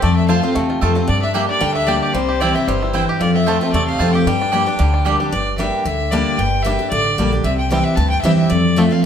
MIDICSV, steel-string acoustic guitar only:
0, 0, Header, 1, 2, 480
1, 0, Start_track
1, 0, Tempo, 264901
1, 53, Time_signature, 4, 2, 24, 8
1, 16409, End_track
2, 0, Start_track
2, 0, Title_t, "Steel-string acoustic guitar"
2, 0, Program_c, 0, 25
2, 40, Note_on_c, 0, 41, 87
2, 515, Note_on_c, 0, 53, 66
2, 527, Note_on_c, 0, 57, 60
2, 540, Note_on_c, 0, 65, 67
2, 541, Note_on_c, 0, 60, 66
2, 764, Note_off_c, 0, 65, 0
2, 772, Note_off_c, 0, 53, 0
2, 778, Note_off_c, 0, 57, 0
2, 785, Note_off_c, 0, 60, 0
2, 786, Note_on_c, 0, 65, 63
2, 806, Note_on_c, 0, 60, 49
2, 962, Note_off_c, 0, 41, 0
2, 1001, Note_off_c, 0, 65, 0
2, 1008, Note_on_c, 0, 48, 85
2, 1011, Note_off_c, 0, 60, 0
2, 1480, Note_on_c, 0, 53, 52
2, 1491, Note_on_c, 0, 57, 66
2, 1500, Note_on_c, 0, 60, 55
2, 1510, Note_on_c, 0, 65, 65
2, 1702, Note_off_c, 0, 65, 0
2, 1724, Note_on_c, 0, 65, 60
2, 1727, Note_off_c, 0, 60, 0
2, 1734, Note_off_c, 0, 53, 0
2, 1740, Note_off_c, 0, 57, 0
2, 1749, Note_on_c, 0, 60, 47
2, 1925, Note_off_c, 0, 48, 0
2, 1948, Note_on_c, 0, 43, 85
2, 1950, Note_off_c, 0, 65, 0
2, 1962, Note_off_c, 0, 60, 0
2, 2429, Note_on_c, 0, 55, 57
2, 2438, Note_on_c, 0, 58, 65
2, 2448, Note_on_c, 0, 62, 59
2, 2461, Note_on_c, 0, 67, 63
2, 2875, Note_off_c, 0, 43, 0
2, 2898, Note_off_c, 0, 55, 0
2, 2903, Note_off_c, 0, 58, 0
2, 2908, Note_off_c, 0, 62, 0
2, 2908, Note_on_c, 0, 50, 88
2, 2914, Note_off_c, 0, 67, 0
2, 3381, Note_on_c, 0, 55, 66
2, 3395, Note_on_c, 0, 58, 61
2, 3409, Note_on_c, 0, 62, 65
2, 3414, Note_on_c, 0, 67, 65
2, 3835, Note_off_c, 0, 50, 0
2, 3854, Note_off_c, 0, 55, 0
2, 3861, Note_off_c, 0, 58, 0
2, 3868, Note_off_c, 0, 62, 0
2, 3871, Note_off_c, 0, 67, 0
2, 3886, Note_on_c, 0, 48, 92
2, 4360, Note_on_c, 0, 52, 59
2, 4369, Note_on_c, 0, 55, 60
2, 4386, Note_on_c, 0, 60, 67
2, 4389, Note_on_c, 0, 64, 68
2, 4606, Note_off_c, 0, 64, 0
2, 4614, Note_off_c, 0, 52, 0
2, 4618, Note_off_c, 0, 55, 0
2, 4627, Note_off_c, 0, 60, 0
2, 4628, Note_on_c, 0, 64, 66
2, 4657, Note_on_c, 0, 60, 55
2, 4804, Note_off_c, 0, 48, 0
2, 4842, Note_off_c, 0, 64, 0
2, 4856, Note_off_c, 0, 60, 0
2, 4863, Note_on_c, 0, 43, 93
2, 5316, Note_on_c, 0, 52, 54
2, 5326, Note_on_c, 0, 55, 58
2, 5338, Note_on_c, 0, 60, 63
2, 5345, Note_on_c, 0, 64, 65
2, 5773, Note_off_c, 0, 43, 0
2, 5782, Note_off_c, 0, 52, 0
2, 5786, Note_off_c, 0, 55, 0
2, 5792, Note_off_c, 0, 60, 0
2, 5795, Note_off_c, 0, 64, 0
2, 5808, Note_on_c, 0, 41, 90
2, 6281, Note_on_c, 0, 53, 56
2, 6292, Note_on_c, 0, 57, 61
2, 6300, Note_on_c, 0, 60, 66
2, 6302, Note_on_c, 0, 65, 70
2, 6520, Note_off_c, 0, 65, 0
2, 6534, Note_off_c, 0, 53, 0
2, 6539, Note_off_c, 0, 57, 0
2, 6542, Note_on_c, 0, 65, 70
2, 6543, Note_off_c, 0, 60, 0
2, 6572, Note_on_c, 0, 60, 54
2, 6725, Note_off_c, 0, 41, 0
2, 6758, Note_off_c, 0, 65, 0
2, 6773, Note_off_c, 0, 60, 0
2, 6779, Note_on_c, 0, 48, 87
2, 7257, Note_on_c, 0, 53, 55
2, 7267, Note_on_c, 0, 57, 63
2, 7279, Note_on_c, 0, 60, 64
2, 7289, Note_on_c, 0, 65, 69
2, 7690, Note_off_c, 0, 48, 0
2, 7711, Note_off_c, 0, 53, 0
2, 7716, Note_off_c, 0, 57, 0
2, 7723, Note_off_c, 0, 60, 0
2, 7727, Note_off_c, 0, 65, 0
2, 7740, Note_on_c, 0, 43, 92
2, 8202, Note_on_c, 0, 55, 54
2, 8212, Note_on_c, 0, 58, 60
2, 8221, Note_on_c, 0, 62, 64
2, 8230, Note_on_c, 0, 67, 66
2, 8429, Note_off_c, 0, 67, 0
2, 8451, Note_on_c, 0, 67, 65
2, 8454, Note_off_c, 0, 55, 0
2, 8459, Note_off_c, 0, 58, 0
2, 8464, Note_off_c, 0, 62, 0
2, 8483, Note_on_c, 0, 62, 51
2, 8651, Note_off_c, 0, 43, 0
2, 8673, Note_off_c, 0, 67, 0
2, 8674, Note_on_c, 0, 50, 95
2, 8688, Note_off_c, 0, 62, 0
2, 9165, Note_on_c, 0, 55, 56
2, 9169, Note_on_c, 0, 58, 68
2, 9185, Note_on_c, 0, 62, 65
2, 9190, Note_on_c, 0, 67, 65
2, 9403, Note_off_c, 0, 67, 0
2, 9415, Note_off_c, 0, 55, 0
2, 9417, Note_off_c, 0, 58, 0
2, 9425, Note_off_c, 0, 62, 0
2, 9425, Note_on_c, 0, 67, 54
2, 9454, Note_on_c, 0, 62, 51
2, 9598, Note_off_c, 0, 50, 0
2, 9639, Note_off_c, 0, 67, 0
2, 9648, Note_on_c, 0, 43, 90
2, 9654, Note_off_c, 0, 62, 0
2, 10114, Note_on_c, 0, 55, 85
2, 10127, Note_on_c, 0, 58, 89
2, 10142, Note_on_c, 0, 62, 84
2, 10147, Note_on_c, 0, 67, 93
2, 10564, Note_off_c, 0, 43, 0
2, 10580, Note_off_c, 0, 55, 0
2, 10586, Note_off_c, 0, 58, 0
2, 10594, Note_off_c, 0, 62, 0
2, 10596, Note_off_c, 0, 67, 0
2, 10609, Note_on_c, 0, 50, 83
2, 11087, Note_on_c, 0, 55, 84
2, 11099, Note_on_c, 0, 58, 95
2, 11104, Note_on_c, 0, 62, 92
2, 11112, Note_on_c, 0, 67, 99
2, 11525, Note_off_c, 0, 50, 0
2, 11546, Note_off_c, 0, 55, 0
2, 11552, Note_off_c, 0, 58, 0
2, 11554, Note_off_c, 0, 62, 0
2, 11559, Note_off_c, 0, 67, 0
2, 11577, Note_on_c, 0, 43, 88
2, 12039, Note_on_c, 0, 55, 93
2, 12048, Note_on_c, 0, 58, 89
2, 12065, Note_on_c, 0, 62, 91
2, 12066, Note_on_c, 0, 67, 102
2, 12279, Note_off_c, 0, 67, 0
2, 12292, Note_off_c, 0, 55, 0
2, 12296, Note_off_c, 0, 58, 0
2, 12300, Note_on_c, 0, 67, 67
2, 12305, Note_off_c, 0, 62, 0
2, 12330, Note_on_c, 0, 62, 50
2, 12488, Note_off_c, 0, 43, 0
2, 12517, Note_off_c, 0, 67, 0
2, 12531, Note_off_c, 0, 62, 0
2, 12532, Note_on_c, 0, 50, 90
2, 13009, Note_on_c, 0, 55, 94
2, 13016, Note_on_c, 0, 58, 86
2, 13028, Note_on_c, 0, 62, 92
2, 13034, Note_on_c, 0, 67, 89
2, 13248, Note_off_c, 0, 67, 0
2, 13257, Note_off_c, 0, 55, 0
2, 13261, Note_off_c, 0, 58, 0
2, 13267, Note_off_c, 0, 62, 0
2, 13269, Note_on_c, 0, 67, 60
2, 13293, Note_on_c, 0, 62, 53
2, 13446, Note_off_c, 0, 50, 0
2, 13481, Note_off_c, 0, 67, 0
2, 13487, Note_on_c, 0, 48, 85
2, 13493, Note_off_c, 0, 62, 0
2, 13961, Note_on_c, 0, 52, 91
2, 13977, Note_on_c, 0, 55, 82
2, 13984, Note_on_c, 0, 60, 86
2, 13994, Note_on_c, 0, 64, 91
2, 14404, Note_off_c, 0, 48, 0
2, 14423, Note_off_c, 0, 52, 0
2, 14431, Note_off_c, 0, 55, 0
2, 14434, Note_off_c, 0, 60, 0
2, 14439, Note_off_c, 0, 64, 0
2, 14444, Note_on_c, 0, 43, 89
2, 14922, Note_on_c, 0, 52, 82
2, 14931, Note_on_c, 0, 55, 90
2, 14941, Note_on_c, 0, 60, 97
2, 14948, Note_on_c, 0, 64, 96
2, 15362, Note_off_c, 0, 43, 0
2, 15383, Note_off_c, 0, 52, 0
2, 15388, Note_off_c, 0, 55, 0
2, 15393, Note_off_c, 0, 60, 0
2, 15395, Note_on_c, 0, 41, 91
2, 15396, Note_off_c, 0, 64, 0
2, 15880, Note_on_c, 0, 53, 87
2, 15892, Note_on_c, 0, 57, 89
2, 15899, Note_on_c, 0, 60, 89
2, 15910, Note_on_c, 0, 65, 88
2, 16113, Note_off_c, 0, 65, 0
2, 16132, Note_off_c, 0, 53, 0
2, 16135, Note_on_c, 0, 65, 64
2, 16139, Note_off_c, 0, 57, 0
2, 16142, Note_off_c, 0, 60, 0
2, 16166, Note_on_c, 0, 60, 53
2, 16318, Note_off_c, 0, 41, 0
2, 16354, Note_off_c, 0, 65, 0
2, 16370, Note_off_c, 0, 60, 0
2, 16409, End_track
0, 0, End_of_file